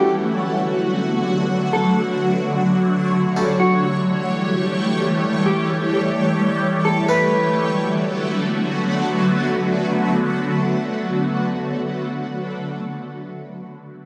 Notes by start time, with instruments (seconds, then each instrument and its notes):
Already playing: ambient pad D3 F#3 A3 B3 F#4, harpsichord A3 D4 B4
1.51 ambient pad C#5
1.73 clean electric guitar A4
3.36 ambient pad E3 G3 A3 G4, harpsichord G3 C#4 A4
3.60 clean electric guitar F#4
5.46 clean electric guitar G4
6.85 clean electric guitar A4
7.08 ambient pad D3 F#3 A3 B3 F#4, harpsichord A3 D4 B4, clean electric guitar B4